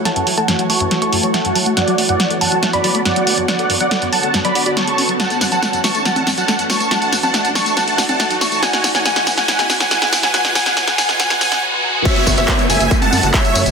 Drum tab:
CC |----------------|----------------|----------------|----------------|
HH |xxoxxxoxxxoxxxox|xxoxxxoxxxoxxxox|xxoxxxoxxxoxxxox|xxoxxxoxxxoxxxox|
TB |----------------|----------------|----------------|xxxxxxxxxxxxxxxx|
CP |----------------|----------------|----------------|----------------|
SD |o---o---o---o---|o---o---o---o---|o---o---o---o---|o-o-o-o-o-o-o-o-|
CG |----------------|----------------|----------------|---------oo-----|
BD |----------------|----------------|----------------|----------------|

CC |----------------|----------------|----------------|x---------------|
HH |xxoxxxoxxxoxxxox|xxoxxxoxxxoxxxox|xxoxxxoxxxox----|xxoxxxoxxxoxxxox|
TB |xxxxxxxxxxxxxxxx|xxxxxxxxxxxxxxxx|xxxxxxxxxxxx----|x-xxxxxxxxxxxxxx|
CP |----------------|----------------|----------------|----x-------x---|
SD |o-o-o-o-o-o-o-o-|oooooooooooooooo|oooooooooooo----|----------------|
CG |---o-------o----|---------oo-----|---o-------o----|---------oo-----|
BD |----------------|----------------|----------------|o-o-o---o---o---|